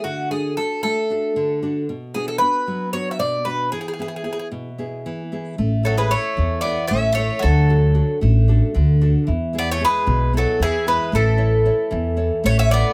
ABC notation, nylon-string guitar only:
X:1
M:7/8
L:1/8
Q:1/4=114
K:A
V:1 name="Nylon-string guitar"
D, [DFA] [DFA] A, [DFA] D, [DFA] | B,, [B,DF] [B,DF] F, [B,DF] B,, [B,DF] | E, [B,EG] [B,EG] B,, [B,EG] E, [B,EG] | A, [EAc] [EAc] E, [EAc] A, [EAc] |
D, [DFA] [DFA] A, [DFA] D, [DFA] | E, [B,EG] [B,EG] B,, [B,EG] E, [B,EG] | A, [EAc] [EAc] E, [EAc] A, [EAc] |]